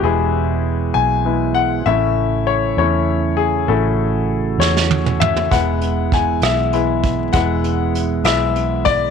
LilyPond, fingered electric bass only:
\new Staff \with { instrumentName = "Fingered electric bass" } { \clef bass \time 6/8 \key a \major \tempo 4. = 66 e,,4. b,,4. | a,,4. e,4. | a,,4. e,4. | e,,4. b,,4. |
e,,4. b,,4. | }